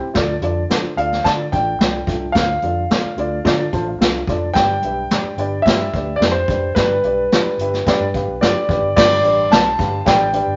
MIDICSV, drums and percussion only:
0, 0, Header, 1, 2, 480
1, 0, Start_track
1, 0, Tempo, 550459
1, 134, Time_signature, 4, 2, 24, 8
1, 9210, End_track
2, 0, Start_track
2, 0, Title_t, "Drums"
2, 129, Note_on_c, 9, 42, 79
2, 132, Note_on_c, 9, 36, 93
2, 134, Note_on_c, 9, 38, 98
2, 216, Note_off_c, 9, 42, 0
2, 219, Note_off_c, 9, 36, 0
2, 221, Note_off_c, 9, 38, 0
2, 364, Note_on_c, 9, 42, 64
2, 452, Note_off_c, 9, 42, 0
2, 612, Note_on_c, 9, 42, 74
2, 617, Note_on_c, 9, 38, 101
2, 699, Note_off_c, 9, 42, 0
2, 704, Note_off_c, 9, 38, 0
2, 851, Note_on_c, 9, 42, 73
2, 939, Note_off_c, 9, 42, 0
2, 980, Note_on_c, 9, 38, 33
2, 1067, Note_off_c, 9, 38, 0
2, 1085, Note_on_c, 9, 42, 79
2, 1090, Note_on_c, 9, 36, 79
2, 1098, Note_on_c, 9, 38, 97
2, 1172, Note_off_c, 9, 42, 0
2, 1177, Note_off_c, 9, 36, 0
2, 1185, Note_off_c, 9, 38, 0
2, 1331, Note_on_c, 9, 42, 74
2, 1332, Note_on_c, 9, 36, 80
2, 1418, Note_off_c, 9, 42, 0
2, 1420, Note_off_c, 9, 36, 0
2, 1574, Note_on_c, 9, 42, 80
2, 1576, Note_on_c, 9, 38, 109
2, 1662, Note_off_c, 9, 42, 0
2, 1663, Note_off_c, 9, 38, 0
2, 1807, Note_on_c, 9, 36, 95
2, 1814, Note_on_c, 9, 42, 78
2, 1894, Note_off_c, 9, 36, 0
2, 1901, Note_off_c, 9, 42, 0
2, 2049, Note_on_c, 9, 42, 75
2, 2051, Note_on_c, 9, 36, 97
2, 2053, Note_on_c, 9, 38, 99
2, 2136, Note_off_c, 9, 42, 0
2, 2138, Note_off_c, 9, 36, 0
2, 2141, Note_off_c, 9, 38, 0
2, 2285, Note_on_c, 9, 42, 66
2, 2373, Note_off_c, 9, 42, 0
2, 2533, Note_on_c, 9, 42, 77
2, 2538, Note_on_c, 9, 38, 101
2, 2620, Note_off_c, 9, 42, 0
2, 2625, Note_off_c, 9, 38, 0
2, 2769, Note_on_c, 9, 42, 72
2, 2856, Note_off_c, 9, 42, 0
2, 3008, Note_on_c, 9, 42, 73
2, 3010, Note_on_c, 9, 36, 78
2, 3021, Note_on_c, 9, 38, 94
2, 3095, Note_off_c, 9, 42, 0
2, 3097, Note_off_c, 9, 36, 0
2, 3108, Note_off_c, 9, 38, 0
2, 3252, Note_on_c, 9, 36, 72
2, 3252, Note_on_c, 9, 42, 71
2, 3339, Note_off_c, 9, 42, 0
2, 3340, Note_off_c, 9, 36, 0
2, 3499, Note_on_c, 9, 42, 84
2, 3501, Note_on_c, 9, 38, 103
2, 3587, Note_off_c, 9, 42, 0
2, 3588, Note_off_c, 9, 38, 0
2, 3728, Note_on_c, 9, 36, 92
2, 3737, Note_on_c, 9, 42, 77
2, 3815, Note_off_c, 9, 36, 0
2, 3824, Note_off_c, 9, 42, 0
2, 3970, Note_on_c, 9, 42, 78
2, 3971, Note_on_c, 9, 36, 93
2, 3974, Note_on_c, 9, 38, 98
2, 4057, Note_off_c, 9, 42, 0
2, 4059, Note_off_c, 9, 36, 0
2, 4062, Note_off_c, 9, 38, 0
2, 4205, Note_on_c, 9, 42, 68
2, 4293, Note_off_c, 9, 42, 0
2, 4451, Note_on_c, 9, 42, 69
2, 4456, Note_on_c, 9, 38, 105
2, 4538, Note_off_c, 9, 42, 0
2, 4543, Note_off_c, 9, 38, 0
2, 4690, Note_on_c, 9, 42, 69
2, 4777, Note_off_c, 9, 42, 0
2, 4933, Note_on_c, 9, 42, 69
2, 4934, Note_on_c, 9, 36, 82
2, 4946, Note_on_c, 9, 38, 105
2, 5020, Note_off_c, 9, 42, 0
2, 5021, Note_off_c, 9, 36, 0
2, 5033, Note_off_c, 9, 38, 0
2, 5176, Note_on_c, 9, 36, 76
2, 5176, Note_on_c, 9, 42, 67
2, 5263, Note_off_c, 9, 36, 0
2, 5263, Note_off_c, 9, 42, 0
2, 5422, Note_on_c, 9, 42, 80
2, 5423, Note_on_c, 9, 38, 107
2, 5509, Note_off_c, 9, 42, 0
2, 5511, Note_off_c, 9, 38, 0
2, 5651, Note_on_c, 9, 36, 94
2, 5662, Note_on_c, 9, 42, 73
2, 5739, Note_off_c, 9, 36, 0
2, 5749, Note_off_c, 9, 42, 0
2, 5895, Note_on_c, 9, 42, 76
2, 5897, Note_on_c, 9, 36, 96
2, 5899, Note_on_c, 9, 38, 95
2, 5982, Note_off_c, 9, 42, 0
2, 5984, Note_off_c, 9, 36, 0
2, 5986, Note_off_c, 9, 38, 0
2, 6134, Note_on_c, 9, 42, 68
2, 6221, Note_off_c, 9, 42, 0
2, 6382, Note_on_c, 9, 42, 72
2, 6387, Note_on_c, 9, 38, 105
2, 6469, Note_off_c, 9, 42, 0
2, 6474, Note_off_c, 9, 38, 0
2, 6618, Note_on_c, 9, 42, 73
2, 6705, Note_off_c, 9, 42, 0
2, 6745, Note_on_c, 9, 38, 33
2, 6832, Note_off_c, 9, 38, 0
2, 6857, Note_on_c, 9, 42, 73
2, 6859, Note_on_c, 9, 36, 80
2, 6870, Note_on_c, 9, 38, 104
2, 6944, Note_off_c, 9, 42, 0
2, 6946, Note_off_c, 9, 36, 0
2, 6957, Note_off_c, 9, 38, 0
2, 7098, Note_on_c, 9, 42, 70
2, 7101, Note_on_c, 9, 36, 77
2, 7185, Note_off_c, 9, 42, 0
2, 7188, Note_off_c, 9, 36, 0
2, 7345, Note_on_c, 9, 42, 75
2, 7347, Note_on_c, 9, 38, 111
2, 7432, Note_off_c, 9, 42, 0
2, 7434, Note_off_c, 9, 38, 0
2, 7577, Note_on_c, 9, 36, 91
2, 7587, Note_on_c, 9, 42, 81
2, 7664, Note_off_c, 9, 36, 0
2, 7674, Note_off_c, 9, 42, 0
2, 7821, Note_on_c, 9, 36, 109
2, 7825, Note_on_c, 9, 49, 94
2, 7829, Note_on_c, 9, 38, 116
2, 7908, Note_off_c, 9, 36, 0
2, 7912, Note_off_c, 9, 49, 0
2, 7916, Note_off_c, 9, 38, 0
2, 8057, Note_on_c, 9, 42, 75
2, 8145, Note_off_c, 9, 42, 0
2, 8300, Note_on_c, 9, 42, 88
2, 8305, Note_on_c, 9, 38, 120
2, 8387, Note_off_c, 9, 42, 0
2, 8392, Note_off_c, 9, 38, 0
2, 8536, Note_on_c, 9, 36, 96
2, 8538, Note_on_c, 9, 42, 83
2, 8623, Note_off_c, 9, 36, 0
2, 8625, Note_off_c, 9, 42, 0
2, 8772, Note_on_c, 9, 42, 87
2, 8776, Note_on_c, 9, 36, 91
2, 8784, Note_on_c, 9, 38, 117
2, 8859, Note_off_c, 9, 42, 0
2, 8863, Note_off_c, 9, 36, 0
2, 8872, Note_off_c, 9, 38, 0
2, 9010, Note_on_c, 9, 42, 79
2, 9098, Note_off_c, 9, 42, 0
2, 9210, End_track
0, 0, End_of_file